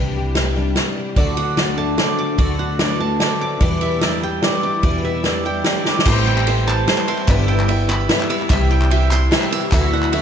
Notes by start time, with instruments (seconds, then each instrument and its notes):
Already playing: upright bass C2, twelve-string acoustic guitar C3 E3 G3 D4 G4, steel-string acoustic guitar C3 G3
0.17 steel-string acoustic guitar G4
0.35 twelve-string acoustic guitar E3 G3 D4 G4, steel-string acoustic guitar E4, snare, ride
0.55 steel-string acoustic guitar G3, twelve-string acoustic guitar G3 D4 G4
0.76 twelve-string acoustic guitar E3 G3 D4 G4, steel-string acoustic guitar D5, snare, ride
0.98 steel-string acoustic guitar G4
1.16 upright bass D2, upright piano D2 D3 F#3 D4 A4 D5, twelve-string acoustic guitar D3 A3 D4 F#4, steel-string acoustic guitar D3, qanun D5, kick, ride
1.37 steel-string acoustic guitar F#4, qanun F#5, ride
1.57 twelve-string acoustic guitar D3 A3 D4 F#4, upright piano F#3 D4 A4 D5, steel-string acoustic guitar D4, qanun D5, snare, ride
1.78 steel-string acoustic guitar A3, qanun A5
1.98 twelve-string acoustic guitar D3 A3 D4 F#4, upright piano F#3 D4 A4 D5, steel-string acoustic guitar C5, qanun D5, snare, ride
2.19 steel-string acoustic guitar F#4, qanun D6
2.38 upright bass D2, upright piano D2 D3 F#3 D4 A4 D5, twelve-string acoustic guitar D3 A3 D4 F#4, steel-string acoustic guitar D3, qanun D5, kick, ride
2.59 steel-string acoustic guitar F#4, qanun F#5
2.79 twelve-string acoustic guitar D3 A3 D4 F#4, upright piano F#3 D4 A4 B4, steel-string acoustic guitar D4, qanun D5, snare, ride
3.00 steel-string acoustic guitar A3, qanun A5
3.20 twelve-string acoustic guitar D3 A3 D4 F#4, upright piano F#3 D4 A4 D5, steel-string acoustic guitar C5, qanun D5, snare, ride
3.41 steel-string acoustic guitar F#4, qanun D6
3.60 upright piano E2 E3 G3 E4 B4 D5, twelve-string acoustic guitar E2 B2 E3 G3 D4 E4, upright bass E2, steel-string acoustic guitar E3, qanun D5, kick, ride
3.81 steel-string acoustic guitar G4, qanun E5, ride
4.01 twelve-string acoustic guitar E3 G3 D4 E4, upright piano G3 E4 B4 E5, steel-string acoustic guitar D4, qanun D5, snare, ride
4.23 steel-string acoustic guitar G3, qanun G5
4.42 twelve-string acoustic guitar E3 G3 D4 E4, upright piano G3 E4 B4 D5, qanun D5, steel-string acoustic guitar D5, snare, ride
4.63 steel-string acoustic guitar G4, qanun D6
4.83 twelve-string acoustic guitar E2 B2 E3 G3 D4 E4, upright bass E2, upright piano E2 E3 G3 E4 B4 D5, steel-string acoustic guitar E3, qanun D5, kick, ride
5.04 steel-string acoustic guitar G4, qanun E5
5.24 twelve-string acoustic guitar E3 G3 D4 E4, upright piano G3 E4 B4 D5, steel-string acoustic guitar D4, qanun D5, snare, ride
5.45 twelve-string acoustic guitar E3 G3 D4 E4, steel-string acoustic guitar G3, qanun G5
5.64 twelve-string acoustic guitar E3 G3 D4 E4, upright piano G3 E4 B4 D5, qanun D5, steel-string acoustic guitar D5, snare, ride
5.85 twelve-string acoustic guitar E3 G3 D4 E4, steel-string acoustic guitar G4, qanun D6, snare
5.99 snare
6.05 upright bass A1, upright piano A1 A2 G3 E4 A4 C5, twelve-string acoustic guitar A2 E3 G3 C4 E4, qanun C5, kick, clap, crash, tambourine
6.26 qanun G5, clap, tambourine
6.38 clap
6.47 twelve-string acoustic guitar E3 G3 C4 E4, upright piano G3 E4 A4 C5, qanun C5, clap, ride, tambourine
6.57 tambourine
6.68 qanun A5, clap
6.77 tambourine
6.87 twelve-string acoustic guitar E3 G3 C4 E4, upright piano G3 E4 A4 C5, qanun C5, snare, clap, ride
6.98 clap, tambourine
7.08 twelve-string acoustic guitar G3 C4 E4, qanun C6, clap, ride
7.18 clap
7.27 upright bass G1, upright piano G1 G2 G3 E4 B4 D5, twelve-string acoustic guitar G2 D3 E3 G3 B3 E4, qanun E5, kick, clap, ride, tambourine
7.48 qanun G5, clap, tambourine
7.59 clap
7.68 twelve-string acoustic guitar E3 G3 B3 E4, upright piano G3 E4 B4 D5, qanun E5, clap, ride, tambourine
7.79 tambourine
7.89 qanun B5, clap, tambourine
8.00 tambourine
8.09 twelve-string acoustic guitar E3 G3 B3 E4, upright piano G3 E4 B4 D5, qanun E5, snare, clap, ride
8.20 clap, tambourine
8.29 twelve-string acoustic guitar E3 G3 B3 E4, qanun E6, clap, ride
8.41 clap
8.50 upright bass C2, upright piano C2 C3 G3 E4 C5 E5, twelve-string acoustic guitar C3 E3 G3 E4 G4, qanun E5, kick, clap, ride, tambourine
8.71 qanun G5, clap, tambourine
8.82 clap
8.90 twelve-string acoustic guitar E3 G3 E4 G4, upright piano G3 E4 C5 E5, qanun E5, clap, ride, tambourine
9.01 tambourine
9.11 qanun C6, clap, tambourine
9.32 twelve-string acoustic guitar E3 G3 E4 G4, upright piano G3 E4 C5 E5, qanun E5, snare, clap, ride
9.42 clap, tambourine
9.52 qanun E6, clap, ride
9.62 clap
9.72 upright bass D2, upright piano D2 D3 F#3 D4 A4 E5, twelve-string acoustic guitar D3 A3 E4 F#4, qanun E5, kick, clap, ride, tambourine
9.82 clap
9.93 upright piano D5, qanun F#5
10.03 clap, tambourine
10.13 twelve-string acoustic guitar D3 A3 E4 F#4, upright piano F#3 D4 A4 E5, qanun E5, clap, ride